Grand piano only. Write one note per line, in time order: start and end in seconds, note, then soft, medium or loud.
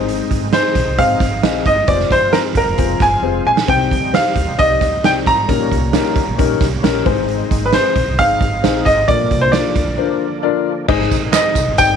0.53 1.00 C5 medium
0.99 1.62 F5 medium
1.66 1.89 D#5 medium
1.88 2.11 D5 medium
2.12 2.35 C5 medium
2.33 2.38 A#4 medium
2.57 3.03 A#4 medium
3.02 3.43 G#5 medium
3.47 3.69 G#5 medium
3.70 4.11 G5 medium
4.15 4.60 F5 medium
4.59 5.05 D#5 medium
5.05 5.10 G5 loud
5.27 6.58 A#5 medium
7.66 7.73 B4 medium
7.74 8.15 C5 medium
8.19 8.88 F5 loud
8.85 9.06 D#5 medium
9.08 9.39 D5 medium
9.41 9.53 C5 medium
9.52 10.38 D5 medium
11.32 11.79 D#5 medium
11.78 11.96 G5 loud